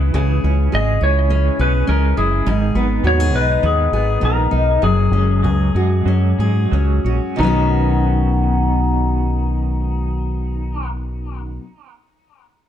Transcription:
Already playing: C#3 E3 G#4
0.14 C#2 C#3 E3 G#4
0.44 C#2 C#4
0.72 G#1 G#3 G#4 D#5
1.01 C#2 C#4 E4 C#5
1.30 G#3 C#4
1.59 B1 C#4 G#4 B4
1.87 C#2 G#3 C#4 A#4
2.17 F#1 E4 G#4
2.46 G#1 G#2 D#3 G#4
2.74 G#1 B3
3.04 D#2 D#3 F#4 C#5
3.20 G#4
3.33 B1 B3 D#4 B4
3.63 D#2 D#3 B3 G#4
3.92 G#1 B3 G#4
4.21 A#1 D#3 B3 A#4
4.51 B1 D#4
4.82 F#1 F#2 F#3 G#4
5.11 F#1 G#3 C#4
5.43 C#2 F#3 G#4
5.75 F#2 G#3 F#4
6.06 F#2 F#3 C#4
6.39 G#2 G#3 G#4
6.72 C#2 F#3 C#4
7.05 A#1 C#4 F#4
7.36 B1 B2 D#3 B3
7.40 F#3 B3 C#4 D#4 F#4
7.44 C#4 F#4

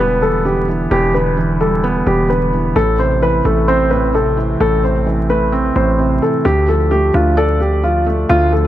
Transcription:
Already playing: E1 E2 D3 E3 G3
0.00 B3 B4
0.22 E2 A4
0.45 D3 G4
0.68 E3
0.91 E1 E2 G4
1.14 D3 B4
1.37 E3
1.60 G3 A4
1.84 B3
2.07 E1 E2 G4
2.30 D3 B4
2.53 E3
2.76 A1 A2 A4
2.99 C3 C5
3.22 E3 B4
3.45 A1 A3 A4
3.68 C4 C5
3.91 A2 B4
4.14 C3 A4
4.37 E3
4.60 A1 A2 A4
4.83 C3 C5
5.06 E3
5.29 A3 B4
5.52 C4
5.76 A1 A2 C5
5.99 C3
6.22 E3 A4
6.45 D2 D3 G4
6.68 F3 A4
6.91 A3 G4
7.14 D2 D4 F4
7.37 A4 D5
7.60 D3 G4
7.83 F3 F4
8.06 A3
8.29 D2 D3 F4
8.52 F3 A4

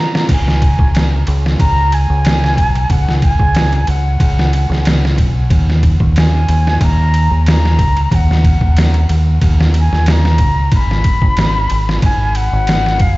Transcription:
Already playing: D#3 A#3 B3 F#4 A#5
0.15 snare
0.29 C#2, kick, crash, ride
0.33 G#5
0.48 snare
0.62 kick, ride
0.79 C#2, kick
0.95 snare, ride
1.27 C#2, ride
1.46 snare
1.59 C#2 A#5, kick, ride
1.92 G#5, ride
2.10 C#2
2.25 snare, ride
2.44 snare
2.57 B1, kick, ride
2.75 ride
2.90 C#2 F#5, kick, ride
3.09 snare
3.22 G#5, kick, ride
3.39 C#2, kick
3.55 snare, ride
3.73 ride
3.87 C#2 F#5, ride
4.20 C#2, kick, ride
4.39 snare
4.53 ride
4.69 C#2, snare
4.85 snare, ride
5.05 snare
5.18 B1, kick, ride
5.50 D#2, kick, ride
5.70 snare
5.83 kick, ride
6.00 D#2, kick
6.16 G#5, snare, ride
6.48 D#2, ride
6.67 snare
6.81 D#2 A#5, kick, ride
7.14 ride
7.31 D#2
7.46 A#5, snare, ride
7.65 snare
7.79 C#2, kick, ride
7.97 ride
8.11 D#2 F#5, kick, ride
8.31 snare
8.44 kick, ride
8.61 D#2, kick
8.77 snare, ride
8.94 ride
9.09 D#2, ride
9.41 D#2, kick, ride
9.60 snare
9.74 ride
9.80 G#5
9.92 D#2, snare
10.06 A#5, snare, ride
10.25 snare
10.38 C#2, kick, ride
10.72 G#1 B5, kick, ride
10.91 snare
11.04 kick, ride
11.22 G#1, kick
11.37 snare, ride
11.70 G#1, ride
11.89 snare
12.02 G#1 G#5, kick, ride
12.35 F#5, ride
12.53 G#1
12.67 snare, ride
12.86 snare
12.99 F#1 F5, kick, ride

